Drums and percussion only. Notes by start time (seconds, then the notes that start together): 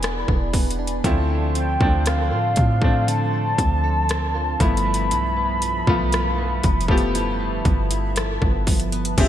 0.03 cross-stick, closed hi-hat
0.28 kick
0.53 kick, closed hi-hat, open hi-hat
0.70 closed hi-hat
0.87 closed hi-hat
1.04 kick, closed hi-hat
1.55 closed hi-hat
1.81 kick
2.06 cross-stick, closed hi-hat
2.56 kick, closed hi-hat
2.82 kick
3.08 closed hi-hat
3.58 kick, closed hi-hat
4.09 cross-stick, closed hi-hat
4.60 kick, closed hi-hat
4.77 closed hi-hat
4.94 closed hi-hat
5.11 closed hi-hat
5.62 closed hi-hat
5.87 kick
6.12 cross-stick, closed hi-hat
6.63 kick, closed hi-hat
6.81 closed hi-hat
6.88 kick
6.98 closed hi-hat
7.15 closed hi-hat
7.65 kick, closed hi-hat
7.91 closed hi-hat
8.16 cross-stick, closed hi-hat
8.42 kick
8.67 kick, closed hi-hat, open hi-hat
8.80 closed hi-hat
8.92 closed hi-hat
9.05 closed hi-hat
9.18 kick, closed hi-hat, crash